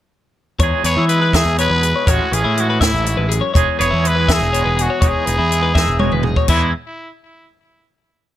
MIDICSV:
0, 0, Header, 1, 6, 480
1, 0, Start_track
1, 0, Key_signature, 4, "major"
1, 0, Tempo, 490998
1, 596, Time_signature, 6, 3, 24, 8
1, 8175, End_track
2, 0, Start_track
2, 0, Title_t, "Clean electric guitar"
2, 0, Program_c, 0, 27
2, 588, Note_on_c, 0, 73, 82
2, 826, Note_off_c, 0, 73, 0
2, 830, Note_on_c, 0, 71, 65
2, 952, Note_off_c, 0, 71, 0
2, 958, Note_on_c, 0, 64, 68
2, 1189, Note_off_c, 0, 64, 0
2, 1193, Note_on_c, 0, 71, 64
2, 1308, Note_off_c, 0, 71, 0
2, 1312, Note_on_c, 0, 76, 72
2, 1549, Note_off_c, 0, 76, 0
2, 1552, Note_on_c, 0, 73, 70
2, 1675, Note_off_c, 0, 73, 0
2, 1675, Note_on_c, 0, 71, 63
2, 1789, Note_off_c, 0, 71, 0
2, 1789, Note_on_c, 0, 68, 72
2, 1909, Note_off_c, 0, 68, 0
2, 1913, Note_on_c, 0, 73, 62
2, 2014, Note_off_c, 0, 73, 0
2, 2026, Note_on_c, 0, 73, 84
2, 2266, Note_off_c, 0, 73, 0
2, 2266, Note_on_c, 0, 71, 70
2, 2385, Note_off_c, 0, 71, 0
2, 2389, Note_on_c, 0, 64, 61
2, 2629, Note_off_c, 0, 64, 0
2, 2637, Note_on_c, 0, 71, 63
2, 2742, Note_off_c, 0, 71, 0
2, 2746, Note_on_c, 0, 76, 74
2, 2975, Note_off_c, 0, 76, 0
2, 2975, Note_on_c, 0, 73, 64
2, 3102, Note_off_c, 0, 73, 0
2, 3102, Note_on_c, 0, 71, 63
2, 3211, Note_off_c, 0, 71, 0
2, 3215, Note_on_c, 0, 68, 75
2, 3335, Note_on_c, 0, 73, 65
2, 3342, Note_off_c, 0, 68, 0
2, 3447, Note_off_c, 0, 73, 0
2, 3458, Note_on_c, 0, 73, 85
2, 3704, Note_off_c, 0, 73, 0
2, 3706, Note_on_c, 0, 71, 70
2, 3819, Note_on_c, 0, 64, 70
2, 3828, Note_off_c, 0, 71, 0
2, 4064, Note_off_c, 0, 64, 0
2, 4064, Note_on_c, 0, 71, 60
2, 4187, Note_off_c, 0, 71, 0
2, 4188, Note_on_c, 0, 76, 79
2, 4425, Note_off_c, 0, 76, 0
2, 4429, Note_on_c, 0, 73, 70
2, 4542, Note_off_c, 0, 73, 0
2, 4546, Note_on_c, 0, 71, 63
2, 4667, Note_on_c, 0, 68, 72
2, 4668, Note_off_c, 0, 71, 0
2, 4789, Note_off_c, 0, 68, 0
2, 4790, Note_on_c, 0, 73, 68
2, 4887, Note_off_c, 0, 73, 0
2, 4898, Note_on_c, 0, 73, 83
2, 5139, Note_off_c, 0, 73, 0
2, 5139, Note_on_c, 0, 71, 69
2, 5258, Note_off_c, 0, 71, 0
2, 5262, Note_on_c, 0, 64, 62
2, 5495, Note_off_c, 0, 64, 0
2, 5499, Note_on_c, 0, 71, 66
2, 5615, Note_off_c, 0, 71, 0
2, 5619, Note_on_c, 0, 76, 80
2, 5860, Note_off_c, 0, 76, 0
2, 5864, Note_on_c, 0, 73, 65
2, 5988, Note_off_c, 0, 73, 0
2, 5988, Note_on_c, 0, 71, 64
2, 6104, Note_off_c, 0, 71, 0
2, 6104, Note_on_c, 0, 68, 70
2, 6227, Note_on_c, 0, 73, 65
2, 6228, Note_off_c, 0, 68, 0
2, 6347, Note_off_c, 0, 73, 0
2, 6351, Note_on_c, 0, 64, 70
2, 6576, Note_off_c, 0, 64, 0
2, 8175, End_track
3, 0, Start_track
3, 0, Title_t, "Trumpet"
3, 0, Program_c, 1, 56
3, 830, Note_on_c, 1, 73, 91
3, 1047, Note_off_c, 1, 73, 0
3, 1053, Note_on_c, 1, 71, 86
3, 1325, Note_on_c, 1, 68, 88
3, 1339, Note_off_c, 1, 71, 0
3, 1558, Note_off_c, 1, 68, 0
3, 1563, Note_on_c, 1, 71, 95
3, 2055, Note_on_c, 1, 66, 86
3, 2070, Note_off_c, 1, 71, 0
3, 2281, Note_on_c, 1, 68, 77
3, 2296, Note_off_c, 1, 66, 0
3, 2544, Note_on_c, 1, 66, 75
3, 2558, Note_off_c, 1, 68, 0
3, 2749, Note_off_c, 1, 66, 0
3, 2754, Note_on_c, 1, 64, 77
3, 3254, Note_off_c, 1, 64, 0
3, 3712, Note_on_c, 1, 73, 86
3, 3979, Note_on_c, 1, 71, 85
3, 3994, Note_off_c, 1, 73, 0
3, 4227, Note_on_c, 1, 68, 94
3, 4242, Note_off_c, 1, 71, 0
3, 4710, Note_on_c, 1, 66, 80
3, 4725, Note_off_c, 1, 68, 0
3, 4968, Note_on_c, 1, 68, 83
3, 4983, Note_off_c, 1, 66, 0
3, 6142, Note_off_c, 1, 68, 0
3, 6340, Note_on_c, 1, 64, 77
3, 6570, Note_off_c, 1, 64, 0
3, 8175, End_track
4, 0, Start_track
4, 0, Title_t, "Clean electric guitar"
4, 0, Program_c, 2, 27
4, 602, Note_on_c, 2, 40, 65
4, 611, Note_on_c, 2, 56, 56
4, 618, Note_on_c, 2, 68, 64
4, 620, Note_on_c, 2, 63, 54
4, 838, Note_off_c, 2, 68, 0
4, 842, Note_on_c, 2, 68, 56
4, 1061, Note_off_c, 2, 56, 0
4, 1061, Note_on_c, 2, 52, 55
4, 1065, Note_on_c, 2, 56, 50
4, 1290, Note_off_c, 2, 63, 0
4, 1302, Note_on_c, 2, 63, 56
4, 1539, Note_on_c, 2, 47, 58
4, 1545, Note_off_c, 2, 56, 0
4, 1549, Note_on_c, 2, 56, 53
4, 1996, Note_off_c, 2, 47, 0
4, 1997, Note_off_c, 2, 63, 0
4, 2012, Note_on_c, 2, 45, 73
4, 2020, Note_off_c, 2, 56, 0
4, 2024, Note_on_c, 2, 56, 59
4, 2027, Note_on_c, 2, 61, 56
4, 2034, Note_off_c, 2, 40, 0
4, 2042, Note_off_c, 2, 68, 0
4, 2251, Note_off_c, 2, 61, 0
4, 2262, Note_on_c, 2, 61, 53
4, 2482, Note_off_c, 2, 52, 0
4, 2486, Note_on_c, 2, 52, 53
4, 2491, Note_off_c, 2, 56, 0
4, 2495, Note_on_c, 2, 56, 55
4, 2730, Note_off_c, 2, 45, 0
4, 2742, Note_on_c, 2, 45, 63
4, 2977, Note_on_c, 2, 44, 61
4, 2985, Note_off_c, 2, 45, 0
4, 3221, Note_off_c, 2, 44, 0
4, 3225, Note_on_c, 2, 42, 64
4, 3436, Note_off_c, 2, 61, 0
4, 3463, Note_off_c, 2, 42, 0
4, 3467, Note_on_c, 2, 40, 72
4, 3471, Note_off_c, 2, 56, 0
4, 3475, Note_on_c, 2, 56, 59
4, 3481, Note_on_c, 2, 63, 51
4, 3488, Note_on_c, 2, 68, 66
4, 3507, Note_off_c, 2, 52, 0
4, 3699, Note_off_c, 2, 68, 0
4, 3703, Note_on_c, 2, 68, 63
4, 3941, Note_on_c, 2, 52, 57
4, 3946, Note_off_c, 2, 56, 0
4, 3950, Note_on_c, 2, 56, 56
4, 4199, Note_off_c, 2, 63, 0
4, 4203, Note_on_c, 2, 63, 57
4, 4436, Note_on_c, 2, 47, 56
4, 4439, Note_off_c, 2, 56, 0
4, 4443, Note_on_c, 2, 56, 54
4, 4884, Note_off_c, 2, 47, 0
4, 4902, Note_off_c, 2, 40, 0
4, 4906, Note_on_c, 2, 40, 67
4, 4912, Note_off_c, 2, 56, 0
4, 4916, Note_on_c, 2, 56, 52
4, 4925, Note_off_c, 2, 63, 0
4, 4929, Note_on_c, 2, 63, 61
4, 4958, Note_off_c, 2, 52, 0
4, 5150, Note_off_c, 2, 63, 0
4, 5161, Note_on_c, 2, 63, 55
4, 5372, Note_off_c, 2, 56, 0
4, 5377, Note_on_c, 2, 52, 56
4, 5383, Note_on_c, 2, 56, 54
4, 5616, Note_off_c, 2, 63, 0
4, 5628, Note_on_c, 2, 63, 57
4, 5862, Note_off_c, 2, 56, 0
4, 5871, Note_on_c, 2, 47, 58
4, 5878, Note_on_c, 2, 56, 51
4, 6317, Note_off_c, 2, 52, 0
4, 6323, Note_off_c, 2, 63, 0
4, 6324, Note_off_c, 2, 47, 0
4, 6325, Note_off_c, 2, 56, 0
4, 6343, Note_off_c, 2, 40, 0
4, 6355, Note_on_c, 2, 40, 66
4, 6364, Note_on_c, 2, 52, 57
4, 6379, Note_on_c, 2, 56, 56
4, 6382, Note_on_c, 2, 63, 54
4, 6386, Note_off_c, 2, 68, 0
4, 6390, Note_on_c, 2, 68, 44
4, 6570, Note_off_c, 2, 40, 0
4, 6575, Note_off_c, 2, 52, 0
4, 6582, Note_off_c, 2, 56, 0
4, 6585, Note_off_c, 2, 63, 0
4, 6586, Note_off_c, 2, 68, 0
4, 8175, End_track
5, 0, Start_track
5, 0, Title_t, "Picked electric bass"
5, 0, Program_c, 3, 34
5, 580, Note_on_c, 3, 40, 84
5, 695, Note_off_c, 3, 40, 0
5, 821, Note_on_c, 3, 40, 77
5, 936, Note_off_c, 3, 40, 0
5, 942, Note_on_c, 3, 52, 74
5, 1388, Note_off_c, 3, 52, 0
5, 1417, Note_on_c, 3, 40, 77
5, 1641, Note_off_c, 3, 40, 0
5, 1662, Note_on_c, 3, 40, 90
5, 1883, Note_off_c, 3, 40, 0
5, 2025, Note_on_c, 3, 33, 83
5, 2136, Note_off_c, 3, 33, 0
5, 2270, Note_on_c, 3, 33, 80
5, 2379, Note_off_c, 3, 33, 0
5, 2401, Note_on_c, 3, 45, 74
5, 2836, Note_off_c, 3, 45, 0
5, 2864, Note_on_c, 3, 33, 83
5, 3084, Note_off_c, 3, 33, 0
5, 3106, Note_on_c, 3, 33, 88
5, 3325, Note_off_c, 3, 33, 0
5, 3472, Note_on_c, 3, 28, 88
5, 3579, Note_off_c, 3, 28, 0
5, 3715, Note_on_c, 3, 28, 82
5, 3821, Note_off_c, 3, 28, 0
5, 3842, Note_on_c, 3, 40, 77
5, 4277, Note_off_c, 3, 40, 0
5, 4309, Note_on_c, 3, 28, 80
5, 4527, Note_off_c, 3, 28, 0
5, 4548, Note_on_c, 3, 28, 85
5, 4766, Note_off_c, 3, 28, 0
5, 4905, Note_on_c, 3, 28, 88
5, 5016, Note_off_c, 3, 28, 0
5, 5155, Note_on_c, 3, 28, 77
5, 5258, Note_off_c, 3, 28, 0
5, 5264, Note_on_c, 3, 40, 80
5, 5709, Note_off_c, 3, 40, 0
5, 5747, Note_on_c, 3, 28, 76
5, 5967, Note_off_c, 3, 28, 0
5, 5988, Note_on_c, 3, 28, 85
5, 6208, Note_off_c, 3, 28, 0
5, 6336, Note_on_c, 3, 40, 80
5, 6568, Note_off_c, 3, 40, 0
5, 8175, End_track
6, 0, Start_track
6, 0, Title_t, "Drums"
6, 581, Note_on_c, 9, 42, 76
6, 584, Note_on_c, 9, 36, 100
6, 679, Note_off_c, 9, 42, 0
6, 681, Note_off_c, 9, 36, 0
6, 824, Note_on_c, 9, 42, 61
6, 921, Note_off_c, 9, 42, 0
6, 1065, Note_on_c, 9, 42, 59
6, 1162, Note_off_c, 9, 42, 0
6, 1304, Note_on_c, 9, 36, 70
6, 1311, Note_on_c, 9, 42, 73
6, 1318, Note_on_c, 9, 38, 100
6, 1402, Note_off_c, 9, 36, 0
6, 1409, Note_off_c, 9, 42, 0
6, 1415, Note_off_c, 9, 38, 0
6, 1548, Note_on_c, 9, 42, 59
6, 1646, Note_off_c, 9, 42, 0
6, 1788, Note_on_c, 9, 42, 63
6, 1886, Note_off_c, 9, 42, 0
6, 2025, Note_on_c, 9, 36, 98
6, 2032, Note_on_c, 9, 42, 86
6, 2123, Note_off_c, 9, 36, 0
6, 2129, Note_off_c, 9, 42, 0
6, 2278, Note_on_c, 9, 42, 62
6, 2376, Note_off_c, 9, 42, 0
6, 2517, Note_on_c, 9, 42, 55
6, 2615, Note_off_c, 9, 42, 0
6, 2747, Note_on_c, 9, 36, 72
6, 2751, Note_on_c, 9, 42, 71
6, 2758, Note_on_c, 9, 38, 102
6, 2845, Note_off_c, 9, 36, 0
6, 2849, Note_off_c, 9, 42, 0
6, 2856, Note_off_c, 9, 38, 0
6, 2995, Note_on_c, 9, 42, 59
6, 3093, Note_off_c, 9, 42, 0
6, 3239, Note_on_c, 9, 42, 58
6, 3337, Note_off_c, 9, 42, 0
6, 3473, Note_on_c, 9, 36, 102
6, 3479, Note_on_c, 9, 42, 79
6, 3571, Note_off_c, 9, 36, 0
6, 3577, Note_off_c, 9, 42, 0
6, 3720, Note_on_c, 9, 42, 53
6, 3817, Note_off_c, 9, 42, 0
6, 3959, Note_on_c, 9, 42, 53
6, 4057, Note_off_c, 9, 42, 0
6, 4190, Note_on_c, 9, 36, 76
6, 4194, Note_on_c, 9, 42, 71
6, 4201, Note_on_c, 9, 38, 100
6, 4288, Note_off_c, 9, 36, 0
6, 4292, Note_off_c, 9, 42, 0
6, 4299, Note_off_c, 9, 38, 0
6, 4440, Note_on_c, 9, 42, 52
6, 4538, Note_off_c, 9, 42, 0
6, 4679, Note_on_c, 9, 42, 54
6, 4776, Note_off_c, 9, 42, 0
6, 4904, Note_on_c, 9, 42, 83
6, 4907, Note_on_c, 9, 36, 106
6, 5002, Note_off_c, 9, 42, 0
6, 5004, Note_off_c, 9, 36, 0
6, 5151, Note_on_c, 9, 42, 57
6, 5249, Note_off_c, 9, 42, 0
6, 5393, Note_on_c, 9, 42, 57
6, 5491, Note_off_c, 9, 42, 0
6, 5625, Note_on_c, 9, 36, 70
6, 5635, Note_on_c, 9, 38, 55
6, 5722, Note_off_c, 9, 36, 0
6, 5733, Note_off_c, 9, 38, 0
6, 5860, Note_on_c, 9, 47, 67
6, 5957, Note_off_c, 9, 47, 0
6, 5980, Note_on_c, 9, 45, 58
6, 6078, Note_off_c, 9, 45, 0
6, 6092, Note_on_c, 9, 43, 81
6, 6190, Note_off_c, 9, 43, 0
6, 6222, Note_on_c, 9, 36, 67
6, 6319, Note_off_c, 9, 36, 0
6, 6334, Note_on_c, 9, 49, 85
6, 6342, Note_on_c, 9, 36, 90
6, 6432, Note_off_c, 9, 49, 0
6, 6440, Note_off_c, 9, 36, 0
6, 8175, End_track
0, 0, End_of_file